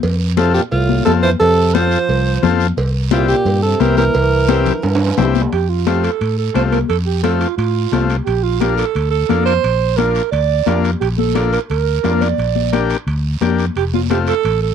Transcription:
0.03 F2, cowbell, high conga, long guiro
0.37 C3 C4 F4 A4, high conga, short guiro
0.54 A#2 G4, short guiro
0.72 C2 A2 F4, cowbell, high conga, long guiro
0.89 high conga
1.05 F2 C3 C4 F4 A4, high conga, low timbale, short guiro
1.23 E3 C5, short guiro
1.40 F2 C3 A4, cowbell, long guiro
1.74 F3 C4 F4 A4 C5, high conga, short guiro
1.91 short guiro
2.09 C2, cowbell, high conga, long guiro
2.43 F2 C4 F4 A4, high conga, low conga, short guiro
2.60 short guiro
2.77 C2, cowbell, high conga, long guiro
3.11 A#2 C4 E4 F4 G4, high conga, short guiro
3.28 A#2 G4, short guiro
3.45 G2, cowbell, high conga, long guiro
3.63 C3 A4
3.80 C2 E3 C4 E4 G4 A#4, high conga, short guiro
3.97 E3 A#4, high conga, short guiro
4.14 C2, cowbell, high conga, long guiro
4.48 C4 E4 G4, high conga, short guiro
4.66 low conga, short guiro
4.83 G2, cowbell, high conga, high timbale, long guiro
4.95 high timbale
5.06 high timbale
5.17 C2 C4 E4 G4, high conga, low conga, low timbale, short guiro
5.35 high conga, short guiro
5.41 low timbale
5.52 F2 G4, high conga, high timbale, long guiro
5.69 F4
5.87 A3 C4 F4 G4, high conga, high timbale, short guiro
6.04 A4, high timbale, short guiro
6.21 A2, high conga, high timbale, long guiro
6.38 A4
6.54 C2 A3 C4 F4 C5, high conga, high timbale, low timbale, short guiro
6.72 A#4, high conga, high timbale, short guiro
6.89 F2 A4, high conga, high timbale, long guiro
7.06 G4
7.23 A3 C4 F4 A4, high conga, high timbale, short guiro
7.40 F4, high timbale, short guiro
7.57 A2 F4, high conga, high timbale, long guiro
7.92 C2 A3 C4 F4, high conga, high timbale, low timbale, short guiro
8.10 high timbale, short guiro
8.25 A#1 G4, high conga, high timbale, long guiro
8.43 F4
8.60 A#3 D4 F4 G4, high conga, high timbale, short guiro
8.76 A4, high timbale, short guiro
8.95 D2, high conga, high timbale, long guiro
9.10 A4
9.29 F2 A#3 D4 F4, high conga, high timbale, short guiro
9.45 C5, high timbale, short guiro
9.64 A#1, high conga, high timbale, long guiro
9.96 A#3 D4 F4 A#4, high conga, high timbale, short guiro
10.15 high timbale, short guiro
10.31 D2 D5, high conga, high timbale, long guiro
10.66 F2 A#3 D4 F4, high conga, high timbale, low timbale, short guiro
10.84 high timbale, short guiro
11.01 A#1 G4, high conga, high timbale, long guiro
11.18 A4, high conga
11.35 A#3 D4 F4, high conga, high timbale, short guiro
11.52 A#4, high timbale, short guiro
11.70 D2 A#4, high conga, high timbale, long guiro
12.03 F2 A#3 D4 F4, high conga, high timbale, low timbale, short guiro
12.21 D5, high conga, high timbale, short guiro
12.38 A#1, high conga, high timbale, long guiro
12.56 high conga
12.73 A#3 D4 G4, high conga, high timbale, short guiro
12.90 high timbale, short guiro
13.07 D2, high conga, high timbale, long guiro
13.41 F2 A#3 D4 G4, high conga, high timbale, short guiro
13.59 high timbale, short guiro
13.75 F1 G4, high conga, high timbale, long guiro
13.94 F4, high conga
14.10 A3 C4 F4 G4, high conga, high timbale, short guiro
14.27 A4, high timbale, short guiro
14.43 A1, high conga, high timbale, long guiro
14.62 A4

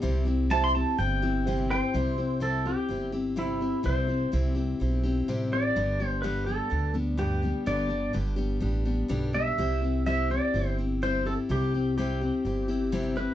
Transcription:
0.02 C2 C3 G3 C4 E4 G4
0.25 C4 E4 G4
0.50 C3 G3 C4 E4 G4 C5 E5 A5
0.64 C6
0.74 C4 E4 G4 A5
0.98 G1 G3 C4 E4 G4 G5
1.22 C4 E4 G4
1.46 C3 G3 C4 E4 G4 C5 G5
1.70 C4 E4 G4 C5 G5
1.94 C2 C3 G3 C4 E4 G4
2.18 C4 E4 G4
2.40 C3 G3 C4 E4 G4 A4
2.65 C4 E4 G4
2.89 G1 G3 C4 E4 G4
3.12 C4 E4 G4
3.36 C3 G3 C4 E4 G4
3.61 C4 E4 G4
3.83 C2 C3 G3 C4 E4 G4 C5
4.07 C4 E4 G4
4.32 C2 C3 G3 C4 E4 G4
4.55 C4 E4 G4
4.80 B1 G3 C4 E4 G4
5.03 C4 E4 G4
5.28 A1 C3 G3 C4 E4 G4
5.52 C4 E4 G4 D5
5.76 G1 G2 D3 G3 B3 D4 G4
6.00 G3 B3 D4 G4
6.08 C5
6.22 G2 D3 G3 B3 D4 G4 B4
6.46 G3 B3 D4 G4 A4
6.70 D2 G3 B3 D4 G4
6.94 G3 B3 D4 G4
7.17 G2 D3 G3 B3 D4 G4
7.42 G3 B3 D4 G4
7.66 G1 G2 D3 G3 B3 D4 G4 D5
7.89 G3 B3 D4 G4
8.13 G1 G2 D3 G3 B3 D4 G4
8.36 G3 B3 D4 G4
8.60 A1 G3 B3 D4 G4
8.85 G3 B3 D4 G4
9.08 B1 G2 D3 G3 B3 D4 G4
9.33 G3 B3 D4 G4 E5
9.58 C2 C3 G3 C4 E4 G4
9.82 C4 E4 G4
10.06 C3 G3 C4 E4 G4 E5
10.30 C4 E4 G4 D5
10.54 G1 G3 C4 E4 G4
10.78 C4 E4 G4
11.02 C3 G3 C4 E4 G4 C5
11.25 C4 E4 G4 A4
11.49 C2 C3 G3 C4 E4 G4
11.74 C4 E4 G4
11.98 C3 G3 C4 E4 G4
12.21 C4 E4 G4
12.45 G1 G3 C4 E4 G4
12.68 C4 E4 G4
12.92 C3 G3 C4 E4 G4
13.16 E4 G4 B4

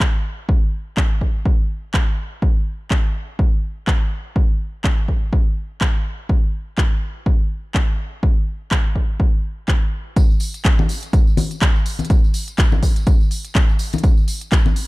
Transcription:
0.00 kick, clap
0.49 kick
0.97 kick, clap
1.21 kick
1.46 kick
1.94 kick, clap
2.42 kick
2.91 kick, clap
3.39 kick
3.87 kick, clap
4.36 kick
4.84 kick, clap
5.08 kick
5.33 kick
5.81 kick, clap
6.29 kick
6.78 kick, clap
7.26 kick
7.75 kick, clap
8.23 kick
8.71 kick, clap
8.96 kick
9.20 kick
9.68 kick, clap
10.16 kick, closed hi-hat, tambourine
10.30 tambourine
10.40 open hi-hat, tambourine
10.54 closed hi-hat, tambourine
10.65 kick, clap, closed hi-hat, tambourine
10.78 tambourine, high conga
10.89 open hi-hat, tambourine
11.02 closed hi-hat, tambourine
11.13 kick, closed hi-hat, tambourine
11.27 tambourine
11.37 open hi-hat, tambourine, high conga
11.51 closed hi-hat, tambourine
11.62 kick, clap, closed hi-hat, tambourine
11.76 tambourine
11.86 open hi-hat, tambourine
11.99 closed hi-hat, tambourine, high conga
12.05 closed hi-hat
12.10 kick, closed hi-hat, tambourine
12.24 tambourine
12.34 open hi-hat, tambourine
12.48 closed hi-hat, tambourine
12.58 kick, clap, closed hi-hat, tambourine
12.72 tambourine, high conga
12.83 kick, open hi-hat, tambourine
12.96 closed hi-hat, tambourine
13.06 kick, closed hi-hat, tambourine
13.20 tambourine
13.31 open hi-hat, tambourine
13.44 closed hi-hat, tambourine
13.55 kick, clap, closed hi-hat, tambourine
13.69 tambourine
13.79 open hi-hat, tambourine
13.93 closed hi-hat, tambourine, high conga
13.98 closed hi-hat
14.03 kick, closed hi-hat, tambourine
14.17 tambourine
14.28 open hi-hat, tambourine
14.41 closed hi-hat, tambourine
14.52 kick, clap, closed hi-hat, tambourine
14.66 tambourine, high conga
14.76 open hi-hat, tambourine

